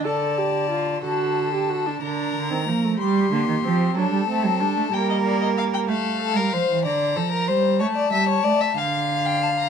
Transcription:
X:1
M:6/8
L:1/16
Q:3/8=62
K:Dphr
V:1 name="Violin"
a6 a6 | b6 c'6 | a6 g e d e f g | f6 b6 |
a6 f3 g a b |]
V:2 name="Violin"
d6 A6 | B6 G6 | A6 B6 | A2 A B c2 d2 A B c2 |
^c d =e c d e f6 |]
V:3 name="Viola"
A2 G2 F2 ^F3 G F D | D3 C B, A, G,2 B,2 C2 | D2 C2 D2 G,6 | z12 |
z12 |]
V:4 name="Cello" clef=bass
D,6 D,6 | D,2 D, E, F,2 G,2 D, E, F,2 | ^F, G, A, F, G, A, B,6 | A,3 G, F, =E, D,2 F,2 G,2 |
A,2 G,2 A,2 D,6 |]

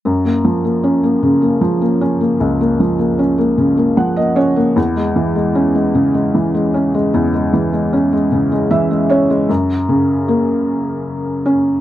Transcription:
X:1
M:6/8
L:1/16
Q:3/8=51
K:F#
V:1 name="Felt piano"
z12 | z8 f d c2 | z12 | z8 =e2 c2 |
z12 |]
V:2 name="Felt piano" clef=bass
F,, A, E, A, C A, C, A, E, A, C A, | C,, A, E, A, C A, C, A, E, A, C A, | =E,, G, =E, G, C G, C, G, E, G, C G, | =E,, G, =E, G, C G, C, G, E, G, C G, |
F,,2 C,2 A,6 C2 |]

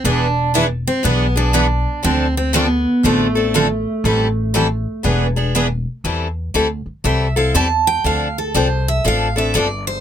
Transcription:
X:1
M:4/4
L:1/8
Q:"Swing" 1/4=120
K:Am
V:1 name="Steel-string acoustic guitar"
D2 E C B, D3 | C C B,2 A,4- | A,4 z4 | z4 e f a g |
f A c e f e d c |]
V:2 name="Steel-string acoustic guitar"
[E,B,D^GB] z [E,B,DGB] z [E,B,DGB] z [E,B,DGB] z | [D,F,CDA] z [D,F,CDA] z [D,F,CDA] z [D,F,CDA] z | [E,G,CEA] z [E,G,CEA] z [E,B,D^GB] z [E,B,DGB] z | z8 |
z8 |]
V:3 name="Steel-string acoustic guitar"
[E,B,D^G] z [E,B,DG] z [E,B,DG] [B,DG] [E,B,DG] z | [D,F,CDA] z [D,F,CDA] z [D,F,CDA] [CDA] [D,F,CDA] z | [E,G,CEA] z [E,G,CEA] z [E,B,D^G] [B,DG] [E,B,DG] z | [E,G,CEA] z [E,G,CEA] z [E,G,CEA] [CEA] [E,G,CEA] z |
[D,F,CDA] z [D,F,CDA] z [D,F,CDA] [CDA] [D,F,CDA] z |]
V:4 name="Upright bass" clef=bass
E,,,4 B,,,4 | D,,4 A,,,4 | A,,,4 E,,,4 | E,,2 D,, z C,,2 E,,2 |
D,,2 C,,2 A,,,2 G,,,2 |]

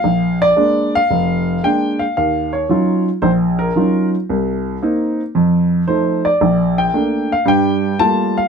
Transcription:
X:1
M:4/4
L:1/8
Q:"Swing" 1/4=113
K:Bb
V:1 name="Upright piano"
f d2 f3 g f | f _d2 z c B2 z | z6 c d- | d g2 f g2 a f |]
V:2 name="Upright piano"
B,,,2 [_A,B,D] z F,,,2 [A,B,D] z | E,,2 [_G,_DEF] z B,,,2 [G,DEF] z | C,,2 [B,CE] z F,,2 [F,A,E] z | B,,,2 [A,B,D] z [G,,G,]2 [G,A,B,F] z |]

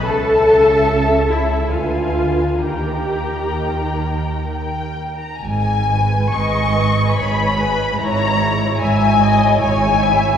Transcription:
X:1
M:3/4
L:1/16
Q:1/4=72
K:G#m
V:1 name="Violin section"
=a6 e2 =f4 | =g8 g3 a | g4 c'4 b4 | a4 g4 g4 |]
V:2 name="Viola section"
=A6 E2 =F4 | =G8 z4 | z4 d4 c2 B2 | c4 e2 d2 c2 e2 |]
V:3 name="Violin section"
[e=a]8 [B_a]4 | [Aa]8- [Aa]3 z | z2 [Bg]4 [Bg]4 [Bg]2 | [Ec]2 [Ec]4 [Ec]4 [Ec]2 |]
V:4 name="Cello section" clef=bass
C,8 =D,4 | D,8- D,3 z | G,,4 G,,4 G,,4 | G,,4 G,,4 G,,4 |]
V:5 name="Double bass section" clef=bass
C,,8 =D,,4 | D,,8- D,,3 z | G,,,4 G,,,4 G,,,4 | G,,,4 G,,,4 G,,,4 |]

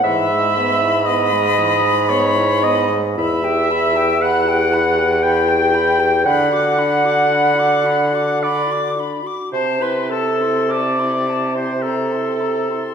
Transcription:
X:1
M:3/4
L:1/16
Q:1/4=56
K:E
V:1 name="Flute"
b12 | [K:Em] b g b g b g b g b g b g | b d' b d' b d' b d' b d' b d' | a c' a c' a c' a c' _b c' b c' |]
V:2 name="Clarinet"
e4 d4 c2 d z | [K:Em] e4 f4 g4 | f8 d2 z2 | c B A2 d3 c A4 |]
V:3 name="Oboe"
e4 d4 c2 d z | [K:Em] e4 f4 g4 | f8 d2 z2 | c B A2 d3 c A4 |]
V:4 name="French horn"
E, G, B, E B, G, E, G, B, E B, G, | [K:Em] E G E G E G E G E G E G | D F D F D F D F D F D F | C E C E C E C E C E C E |]
V:5 name="Bassoon" clef=bass
G,,12 | [K:Em] E,,12 | D,8- D,3 z | C,12 |]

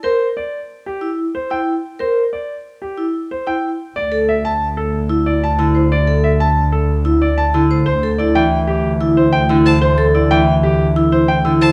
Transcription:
X:1
M:6/4
L:1/8
Q:1/4=184
K:Cmix
V:1 name="Violin"
z12 | z12 | z12 | z12 |
z8 z3 a | z8 z3 a |]
V:2 name="Grand piano"
c z d z2 G z2 c g z2 | c z d z2 G z2 c g z2 | d z e a z A z2 d a z2 | d z e a z A z2 d a z2 |
c z d g z G z2 c g z2 | c z d g z G z2 c g z2 |]
V:3 name="Vibraphone"
B z4 z E z2 E z2 | B z4 z E z2 E z2 | z A z4 z E z2 E c | z A z4 z E z2 E c |
z A E z4 E z2 E c | z A E z4 E z2 E c |]
V:4 name="Harp" clef=bass
z12 | z12 | z8 z2 D,2- | D,8- D,2 D,2 |
z3 E,6- E, D,2- | D,3 E,6- E, D,2 |]
V:5 name="Double bass section" clef=bass
z12 | z12 | D,,12- | D,,12 |
D,,12- | D,,12 |]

